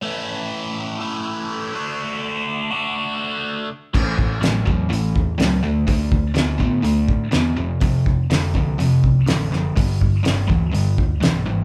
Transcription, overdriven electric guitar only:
\new Staff \with { instrumentName = "Overdriven electric guitar" } { \clef bass \time 4/4 \key d \lydian \tempo 4 = 124 <a, e a cis' e'>2 <a, e a cis' e'>4. <d a d' fis'>8~ | <d a d' fis'>4. <d a d' fis'>2 r8 | <a, e>4 <a, fis>8 <a, fis>8 <a, e>4 <a, fis>8 <d a>8 | <d a>4 <d b>8 <d b>8 <d a>4 <d b>8 <f, c>8 |
<f, c>4 <f, d>8 <f, d>8 <f, c>4 <f, d>8 <f, d>8 | <g, d>4 <g, e>8 <g, e>8 <g, d>4 <g, e>8 <g, e>8 | }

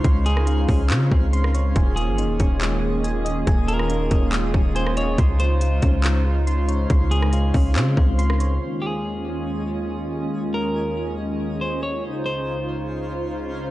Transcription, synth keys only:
\new Staff \with { instrumentName = "Synth keys" } { \time 4/4 \key ees \dorian \tempo 4 = 140 <des' c'' des'' c'''>4 f'8 des'8 c'4 c'''8 des''8 | aes''4 ees'8 des'8 aes4 aes''8 ees''8 | aes''4 ees'8 des'8 aes4 aes''8 ees''8 | c'''4 f'8 des'8 c''4 c'''8 des''8 |
c'''4 f'8 des'8 c'4 c'''8 des''8 | r1 | r1 | r1 | }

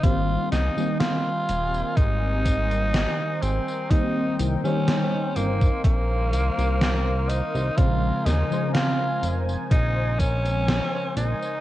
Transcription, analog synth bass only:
\new Staff \with { instrumentName = "Analog synth bass" } { \clef bass \time 4/4 \key aes \major \tempo 4 = 62 aes,,16 r16 c,16 r8. ees,,16 r16 aes,,4 r8 aes,,16 r16 | r8 c,16 r8. g,,16 r16 bes,,8 c,16 c,8. r16 c,16 | bes,,16 r16 ees,16 r8. f,,16 r16 bes,,4 r8 bes,,16 r16 | }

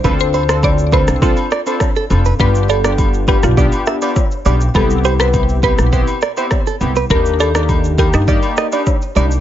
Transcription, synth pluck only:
\new Staff \with { instrumentName = "Synth pluck" } { \time 4/4 \key g \mixolydian \tempo 4 = 102 c''16 c''8. d''8 c''8 f'4. r8 | b'8 a'4 g'16 f'4 r4 r16 | a'8 g'16 b'8. b'2 r8 | bes'8 a'4 g'16 ees'4 r4 r16 | }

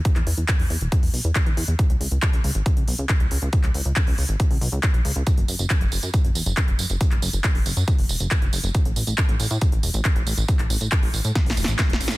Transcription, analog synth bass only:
\new Staff \with { instrumentName = "Analog synth bass" } { \clef bass \time 4/4 \key cis \minor \tempo 4 = 138 r16 e,16 e,16 e,16 r16 e,16 e,16 e,,16 r16 e,16 b,,16 e,16 r16 e,16 e,16 e,16 | r16 cis,16 cis,16 cis,16 r16 cis,16 cis,16 gis,,16 r16 cis,16 b,,16 cis,16 r16 cis,16 cis,16 cis,16 | r16 cis,16 cis,16 cis,16 r16 cis,16 cis,16 gis,,16 r16 cis,16 b,,16 cis,16 r16 b,,16 cis,16 cis,16 | r16 fis,,16 fis,,16 fis,,16 r16 fis,,16 fis,,16 fis,16 r16 fis,,16 e,,16 fis,,16 r16 fis,,16 fis,,16 fis,,16 |
r16 fis,,16 fis,,16 fis,,16 r16 fis,,16 fis,,16 fis,16 r16 fis,,16 e,,16 fis,,16 r16 fis,,16 fis,,16 fis,,16 | r16 a,,16 a,,16 a,,16 r16 a,,16 a,,16 a,16 r16 a,,16 e,,16 a,,16 r16 a,,16 a,,16 a,,16 | r16 a,,16 a,,16 a,,16 r16 a,,16 a,,16 a,16 r16 a,,16 e,,16 a,,16 r16 e,,16 a,,16 a,,16 | }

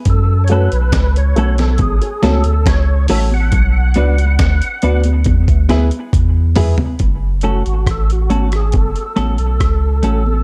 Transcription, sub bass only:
\new Staff \with { instrumentName = "Sub bass" } { \clef bass \time 4/4 \key fis \minor \tempo 4 = 69 fis,8. b,,16 cis,8 b,,8 a,,16 r16 cis,16 d,16 cis,8 a,,8 | b,,8 cis,8 d,16 r16 d,8 e,16 d,16 d,16 r16 e,8 e,16 r16 | fis,,8. gis,,16 a,,8 gis,,8 fis,,16 r16 a,,16 b,,16 cis,8 a,,8 | }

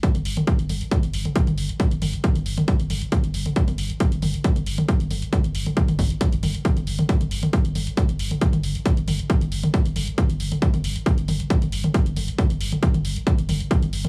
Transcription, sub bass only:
\new Staff \with { instrumentName = "Sub bass" } { \clef bass \time 4/4 \key c \dorian \tempo 4 = 136 r16 g,,16 g,,16 r8 g,,16 g,,16 r8 g,,16 g,,16 r8 g,,16 g,,16 r16 | r16 g,,16 g,,16 r8 g,,16 g,,16 r8 g,,16 g,,16 r8 g,,16 g,,16 r16 | r16 g,,16 g,,16 r8 g,,16 g,,16 r8 g,,16 g,,16 r8 g,,16 g,,16 r16 | r16 g,,16 g,,16 r8 g,,16 g,,16 r8 g,,16 g,,16 r8 g,,16 g,,16 r16 |
r16 g,,16 g,,16 r8 g,,16 g,,16 r8 g,,16 g,,16 r8 g,,16 g,,16 r16 | r16 g,,16 g,,16 r8 g,,16 g,,16 r8 g,,16 g,,16 r8 g,,16 g,,16 r16 | r16 g,,16 g,,16 r8 g,,16 g,,16 r8 g,,16 g,,16 r8 g,,16 g,,16 r16 | r16 g,,16 g,,16 r8 g,,16 g,,16 r8 g,,16 g,,16 r8 g,,16 g,,16 r16 | }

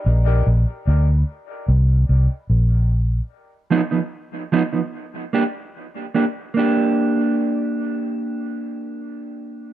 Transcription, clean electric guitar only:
\new Staff \with { instrumentName = "Clean electric guitar" } { \time 4/4 \key bes \mixolydian \tempo 4 = 74 r1 | r8 <f b dis'>16 <f b dis'>16 r8 <f b dis'>16 <f b dis'>16 r8 <bes d' g'>16 r8. <bes d' g'>16 r16 | <bes d' g'>1 | }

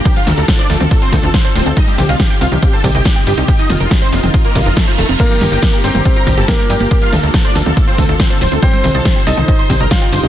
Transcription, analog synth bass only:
\new Staff \with { instrumentName = "Analog synth bass" } { \clef bass \time 4/4 \key d \phrygian \tempo 4 = 140 r8 d,16 d,16 r8 d,16 d,16 r8 d,16 d,16 r8 d,,16 d,16 | r8 c,16 c,16 r8 c,16 c,16 r8 c,16 c,16 r8 g,,16 c,16 | r8 f,,16 f,,16 r8 f,,16 f,,16 r8 c,16 f,,16 r8 ees,,16 f,,16 | r8 g,,16 g,,16 r8 g,,16 g,,16 r8 g,,16 g,,16 r8 g,16 g,,16 |
r8 d,16 d,16 r8 d,16 d,16 r8 d,16 d,16 r8 d,,16 d,16 | r8 c,16 c,16 r8 c,16 c,16 r8 c,16 c,16 r8 g,,16 c,16 | }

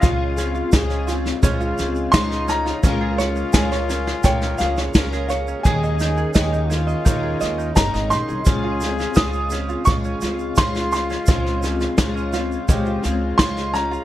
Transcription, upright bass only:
\new Staff \with { instrumentName = "Upright bass" } { \clef bass \time 4/4 \key des \lydian \tempo 4 = 85 des,4 des,4 des,8 des,8 des,4 | des,4 des,4 des,8 des,8 des,4 | ees,4 ees,4 ees,8 ees,8 g,,16 aes,,16 bes,,16 c,16 | des,4 des,4 des,8 des,8 des,4 |
des,4 des,4 des,8 des,8 des,4 | }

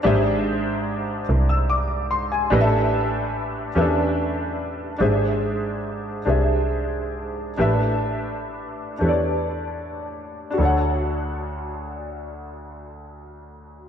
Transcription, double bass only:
\new Staff \with { instrumentName = "Double bass" } { \clef bass \time 6/8 \key d \major \tempo 4. = 47 gis,,4. bis,,4. | a,,4. e,4. | gis,,4. bis,,4. | a,,4. e,4. |
d,2. | }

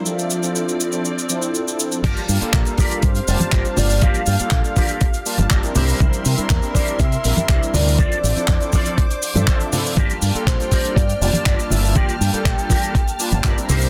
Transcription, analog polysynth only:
\new Staff \with { instrumentName = "Analog polysynth" } { \time 4/4 \key g \dorian \tempo 4 = 121 <f c' d' a' e''>8. <f c' d' e' a'>8 <f c' d' e' a'>8 <f c' d' e' a'>16 r8 <f c' d' e' a'>8. <f c' d' e' a'>8. | <g bes d' f' a''>8. <g bes d' f' a'>8 <g bes d' f' a'>8 <g bes d' f' a'>16 r8 <g bes d' f' a''>8. <g bes d' f' a''>8. | <g f' a''>8. <g bes d' f' a'>8 <g bes d' f' a'>8 <g bes d' f' a'>16 r8 <g bes d' f' a''>8. <g c' d' e' bes'>8. | <g c' d' e' bes'>8. <g c' d' e' bes'>8 <g c' d' e' bes'>8 <g c' d' e' bes'>16 r8 <g c' d' e' bes'>8. <g c' d' e' bes'>8. |
<f c' d' a' e''>8. <f c' d' e' a'>8 <f c' d' e' a'>8 <f c' d' e' a'>16 r8. <f c' d' a' e''>8. <f c' d' e' a'>16 <f c' d' e' a'>16 | <bes f' a''>8. <g bes d' f' a'>8 <g bes d' f' a'>8 <g bes d' f' a'>16 r8 <g bes d' f' a''>8. <g bes d' f' a''>8. | <g bes d' f'>8. <g bes d' f' a'>8 <g bes d' f' a'>8 <g bes d' f' a'>16 r8 <g bes d' f' a''>8. <g c' d' e' bes'>8. | }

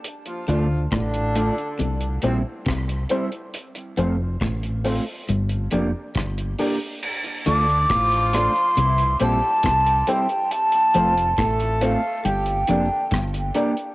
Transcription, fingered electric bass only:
\new Staff \with { instrumentName = "Fingered electric bass" } { \clef bass \time 4/4 \key d \minor \tempo 4 = 69 r8 d,8 a,,8. r16 c,8 bes,,16 r16 c,8 r8 | r8 f,,8 a,,8. r16 g,,8 f,,16 r16 g,,8 r8 | r8 d,8 a,,8. r16 c,8 bes,,16 r16 c,8 r8 | r8 f,,8 a,,8. r16 g,,8 f,,16 r16 g,,8 r8 | }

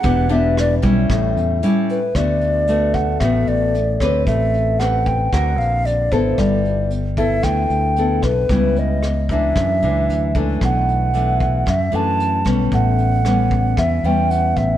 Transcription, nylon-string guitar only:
\new Staff \with { instrumentName = "Nylon-string guitar" } { \time 4/4 \key d \major \tempo 4 = 114 << { <b d' g'>8 <b d' g'>4 <g cis' e'>4. <g cis' e'>8 r8 | <a b fis'>4 <a b fis'>4 <a b fis'>4 r8 <c' g' b'>8~ | <c' g' b'>4 <c' g' b'>4 <c' fis' bes'>4. <b e' a'>8~ | <b e' a'>4 r8 <b e' a'>4. <b e' a'>8 r8 |
<g b e'>4 r8 <e bes d'>4 <e ais d'>4 <e a d'>8~ | <e a d'>4 <e a d'>4 r8 <e a d'>4 <g b cis'>8~ | <g b cis'>4 <g b cis'>4. <g b cis'>4. | } \\ { e2 a,2 | d2 a,2 | a2 d2 | g2 d2 |
cis2 fis,2 | b,2 fis,2 | a,2 e2 | } >> }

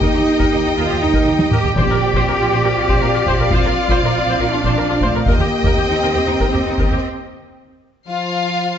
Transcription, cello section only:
\new Staff \with { instrumentName = "Cello section" } { \time 7/8 \key ees \lydian \tempo 4 = 120 ees'4. f'8 ees'4 g'8 | g'2.~ g'8 | f'2 d'4 a8 | bes4 c'2~ c'8 |
r2. r8 | }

